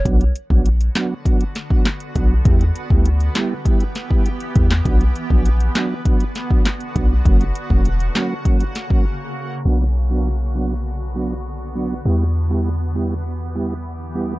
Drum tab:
HH |xxx-xxx-xxx-xxx-|xxx-xxx-xxx-xxx-|xxx-xxx-xxx-xxx-|xxx-xxx-xxx-----|
CP |------x-----x---|------x--------x|------x-----x---|------x---------|
SD |------o---o-o---|------o---o----o|------o---o-o---|------o---o-----|
BD |o--o----o--o--o-|o--o----o--o--o-|o--o----o--o--o-|o--o----o--o----|

HH |----------------|----------------|
CP |----------------|----------------|
SD |----------------|----------------|
BD |----------------|----------------|